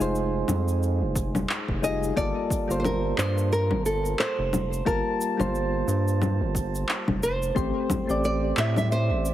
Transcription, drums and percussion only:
0.01 cabasa
0.15 cabasa
0.48 low conga, cabasa
0.68 cabasa
0.83 cabasa
1.16 kick, cabasa
1.35 low conga, cabasa
1.49 clap, cabasa
1.68 kick
1.84 cabasa
2.03 cabasa
2.17 kick, cabasa
2.50 kick, cabasa
2.71 cabasa
2.85 low conga, cabasa
3.18 clap, cabasa
3.38 cabasa
3.53 cabasa
3.71 low conga
3.86 cabasa
4.05 cabasa
4.19 clap, cabasa
4.53 low conga, cabasa
4.73 cabasa
4.86 kick, cabasa
5.21 cabasa
5.40 low conga, cabasa
5.55 cabasa
5.88 cabasa
6.08 cabasa
6.22 low conga, cabasa
6.55 kick, cabasa
6.75 cabasa
6.89 clap, cabasa
7.08 kick, low conga
7.23 cabasa
7.43 cabasa
7.56 kick, cabasa
7.90 kick, low conga, cabasa
8.10 cabasa
8.24 cabasa
8.57 clap, cabasa
8.76 low conga, cabasa
8.92 cabasa
9.26 cabasa

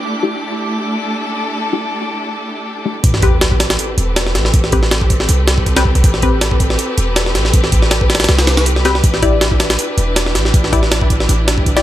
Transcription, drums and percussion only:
3.04 kick, closed hi-hat
3.14 snare
3.22 kick, closed hi-hat
3.41 snare, closed hi-hat
3.51 kick
3.60 snare, closed hi-hat
3.70 snare, closed hi-hat
3.79 closed hi-hat
3.98 closed hi-hat
4.16 snare, closed hi-hat
4.27 snare
4.35 snare, closed hi-hat
4.45 snare
4.54 kick, closed hi-hat
4.64 snare
4.72 kick, closed hi-hat
4.83 snare
4.91 snare, closed hi-hat
5.01 kick
5.10 kick, closed hi-hat
5.20 snare
5.29 closed hi-hat
5.48 snare, closed hi-hat
5.58 kick
5.66 kick, closed hi-hat
5.76 snare, closed hi-hat
5.85 kick
5.95 kick, closed hi-hat
6.04 kick, closed hi-hat
6.14 snare
6.22 kick, closed hi-hat
6.41 snare, closed hi-hat
6.51 kick
6.60 kick, closed hi-hat
6.70 snare
6.79 closed hi-hat
6.98 closed hi-hat
7.16 snare, closed hi-hat
7.26 snare
7.35 snare, closed hi-hat
7.45 snare
7.54 kick, closed hi-hat
7.64 snare
7.72 kick, closed hi-hat
7.82 snare
7.91 snare, closed hi-hat
8.01 kick
8.10 snare, closed hi-hat
8.15 snare, closed hi-hat
8.20 snare, closed hi-hat
8.24 snare, closed hi-hat
8.29 snare, closed hi-hat
8.39 snare, closed hi-hat
8.47 snare, closed hi-hat
8.57 snare, closed hi-hat
8.66 closed hi-hat
8.76 snare
8.85 snare, closed hi-hat
8.95 snare
9.04 kick, closed hi-hat
9.14 snare
9.23 kick, closed hi-hat
9.41 snare, closed hi-hat
9.51 kick
9.60 snare, closed hi-hat
9.70 snare, closed hi-hat
9.79 closed hi-hat
9.98 closed hi-hat
10.16 snare, closed hi-hat
10.26 snare
10.35 snare, closed hi-hat
10.45 snare
10.54 kick, closed hi-hat
10.64 snare
10.73 kick, closed hi-hat
10.83 snare
10.92 snare, closed hi-hat
11.01 kick
11.10 kick, closed hi-hat
11.20 snare
11.29 closed hi-hat
11.48 snare, closed hi-hat
11.58 kick
11.66 kick, closed hi-hat
11.77 snare, closed hi-hat

